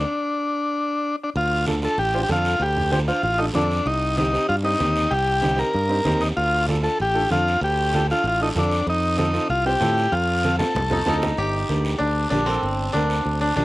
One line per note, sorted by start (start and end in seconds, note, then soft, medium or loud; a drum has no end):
0.00 1.16 D4 medium
1.24 1.30 D4 medium
1.36 1.86 D2 loud
1.36 1.66 F4 medium
1.36 high conga soft
1.36 long guiro medium
1.67 1.73 D4 medium
1.67 1.73 F4 medium
1.67 1.73 A4 medium
1.67 high conga medium
1.67 short guiro medium
1.82 1.93 D4 medium
1.82 1.94 F4 medium
1.82 1.94 A4 medium
1.82 1.98 A4 medium
1.82 short guiro medium
1.98 2.23 A1 medium
1.98 2.21 G4 loud
1.98 high conga soft
1.98 long guiro medium
2.14 2.20 D4 medium
2.14 2.20 F4 medium
2.14 2.20 C5 medium
2.23 2.30 G4 medium
2.28 2.54 F2 medium
2.28 2.51 D4 medium
2.28 2.51 F4 medium
2.28 2.63 F4 medium
2.28 2.52 A4 medium
2.28 high conga medium
2.28 short guiro medium
2.45 short guiro medium
2.60 3.10 D2 loud
2.60 2.91 G4 medium
2.60 high conga soft
2.60 long guiro medium
2.77 low conga medium
2.92 2.98 D4 medium
2.92 2.98 F4 medium
2.92 2.99 G4 medium
2.92 2.98 C5 medium
2.92 high conga medium
2.92 short guiro medium
3.07 3.19 D4 medium
3.07 3.19 F4 medium
3.07 3.23 F4 medium
3.07 3.19 C5 medium
3.07 short guiro medium
3.23 3.48 A1 medium
3.23 3.40 F4 loud
3.23 high conga soft
3.23 long guiro medium
3.38 3.44 D4 medium
3.38 3.46 D#4 loud
3.38 3.45 F4 medium
3.38 3.45 A4 medium
3.54 3.79 F2 loud
3.54 3.77 D4 medium
3.54 3.87 D4 loud
3.54 3.77 F4 medium
3.54 3.78 A4 medium
3.54 high conga medium
3.54 low conga medium
3.54 short guiro medium
3.71 short guiro medium
3.86 4.36 C2 loud
3.86 4.16 D#4 medium
3.86 high conga soft
3.86 long guiro medium
4.17 4.23 C4 medium
4.17 4.47 D#4 medium
4.17 4.23 D#4 medium
4.17 4.24 G4 medium
4.17 high conga medium
4.17 short guiro medium
4.32 4.44 C4 medium
4.32 4.44 D#4 medium
4.32 4.44 G4 medium
4.32 short guiro medium
4.49 4.74 G2 medium
4.49 4.56 F4 loud
4.49 high conga soft
4.49 long guiro medium
4.63 4.70 C4 medium
4.63 4.70 D#4 medium
4.63 5.13 D#4 loud
4.63 4.70 G4 medium
4.79 5.06 D#2 medium
4.79 5.01 C4 medium
4.79 5.02 D#4 medium
4.79 5.02 G4 medium
4.79 high conga medium
4.79 short guiro medium
4.96 short guiro medium
5.10 5.62 C2 loud
5.10 5.60 G4 loud
5.10 high conga soft
5.10 long guiro medium
5.42 5.48 C4 medium
5.42 5.48 D#4 medium
5.42 5.48 G4 medium
5.42 high conga medium
5.42 short guiro medium
5.56 5.68 C4 medium
5.56 5.69 D#4 medium
5.56 5.69 G4 medium
5.56 6.23 A#4 medium
5.56 short guiro medium
5.74 6.00 G2 medium
5.74 high conga soft
5.74 long guiro medium
5.89 5.95 C4 medium
5.89 5.95 D#4 medium
5.89 5.96 G4 medium
6.05 6.31 D#2 medium
6.05 6.27 C4 loud
6.05 6.27 D#4 medium
6.05 6.28 G4 medium
6.05 high conga medium
6.05 low conga medium
6.05 short guiro medium
6.21 6.28 D#4 medium
6.21 short guiro medium
6.37 6.87 D2 loud
6.37 6.66 F4 loud
6.37 high conga soft
6.37 long guiro medium
6.68 6.74 D4 medium
6.68 6.74 F4 medium
6.68 6.74 A4 medium
6.68 high conga medium
6.68 short guiro medium
6.82 6.94 D4 medium
6.82 6.94 F4 medium
6.82 6.95 A4 medium
6.82 6.99 A4 medium
6.82 short guiro medium
7.00 7.25 A1 medium
7.00 7.30 G4 loud
7.00 high conga soft
7.00 long guiro medium
7.14 7.20 D4 medium
7.14 7.21 F4 medium
7.14 7.21 A4 medium
7.30 7.56 F2 medium
7.30 7.53 D4 medium
7.30 7.53 F4 medium
7.30 7.61 F4 loud
7.30 7.53 A4 medium
7.30 high conga medium
7.30 short guiro medium
7.48 short guiro medium
7.61 8.12 D2 loud
7.61 8.07 G4 loud
7.61 high conga soft
7.61 long guiro medium
7.93 7.99 D4 medium
7.93 7.99 F4 medium
7.93 8.00 A4 medium
7.93 high conga medium
7.93 short guiro medium
8.10 8.20 D4 medium
8.10 8.21 F4 medium
8.10 8.26 F4 medium
8.10 8.21 A4 medium
8.10 short guiro medium
8.24 8.49 A1 loud
8.24 8.41 F4 medium
8.24 high conga soft
8.24 long guiro medium
8.40 8.46 D4 medium
8.40 8.49 D#4 medium
8.40 8.46 F4 medium
8.40 8.47 A4 medium
8.55 8.81 F2 loud
8.55 8.78 D4 medium
8.55 8.87 D4 medium
8.55 8.78 F4 medium
8.55 8.78 A4 medium
8.55 high conga medium
8.55 low conga medium
8.55 short guiro medium
8.71 short guiro medium
8.87 9.37 F2 loud
8.87 9.17 D#4 medium
8.87 high conga soft
8.87 long guiro medium
9.17 9.24 C4 medium
9.17 9.48 D#4 medium
9.17 9.24 F4 medium
9.17 9.24 A4 medium
9.17 high conga medium
9.17 short guiro medium
9.33 9.45 C4 medium
9.33 9.45 F4 medium
9.33 9.45 A4 medium
9.33 short guiro medium
9.49 9.75 C2 medium
9.49 9.65 F4 medium
9.49 high conga soft
9.49 long guiro medium
9.66 9.71 C4 medium
9.66 9.71 F4 medium
9.66 10.14 G4 loud
9.66 9.72 C5 medium
9.80 10.06 A2 loud
9.80 10.03 C4 medium
9.80 10.03 F4 medium
9.80 10.03 A4 medium
9.80 high conga medium
9.80 short guiro medium
9.97 short guiro medium
10.12 10.62 F2 loud
10.12 10.56 F4 medium
10.12 high conga soft
10.12 long guiro medium
10.44 10.50 C4 medium
10.44 10.50 F4 medium
10.44 10.50 A4 medium
10.44 high conga medium
10.44 short guiro medium
10.59 10.71 C4 medium
10.59 10.71 F4 medium
10.59 11.18 A4 medium
10.59 10.71 A4 medium
10.59 high conga medium
10.59 short guiro medium
10.75 11.00 C2 medium
10.75 low conga medium
10.75 long guiro medium
10.90 10.96 C4 medium
10.90 10.98 D#4 medium
10.90 10.96 F4 medium
10.90 10.96 A4 medium
10.90 low conga medium
11.05 11.32 D2 medium
11.05 11.28 C4 medium
11.05 12.04 D#4 medium
11.05 11.29 F4 medium
11.05 11.29 A4 loud
11.05 low conga medium
11.05 short guiro medium
11.22 low conga medium
11.22 short guiro medium
11.37 11.63 G1 loud
11.37 13.42 G4 medium
11.37 long guiro medium
11.69 11.94 D2 medium
11.69 11.91 A#3 medium
11.69 11.91 D4 medium
11.69 11.91 G4 medium
11.69 high conga medium
11.69 short guiro medium
11.85 short guiro medium
11.98 12.25 D2 medium
11.98 12.30 D4 medium
11.98 long guiro medium
12.30 12.56 A#1 loud
12.30 12.37 A#3 medium
12.30 12.93 D4 medium
12.30 12.38 D4 medium
12.30 12.38 G4 medium
12.30 high conga medium
12.30 short guiro medium
12.46 12.64 A#3 medium
12.46 13.65 C4 medium
12.46 12.64 D4 medium
12.46 12.64 A4 medium
12.46 short guiro medium
12.63 12.88 G1 loud
12.63 long guiro medium
12.93 13.19 D2 medium
12.93 13.17 A#3 medium
12.93 13.41 D4 medium
12.93 13.17 D4 medium
12.93 13.17 A#4 medium
12.93 high conga medium
12.93 short guiro medium
13.10 short guiro medium
13.25 13.51 D2 medium
13.25 long guiro medium
13.41 13.56 D4 medium
13.56 13.65 A#1 loud
13.56 13.63 A#3 medium
13.56 13.65 D4 medium
13.56 13.63 D4 medium
13.56 13.63 G4 medium
13.56 high conga medium
13.56 short guiro medium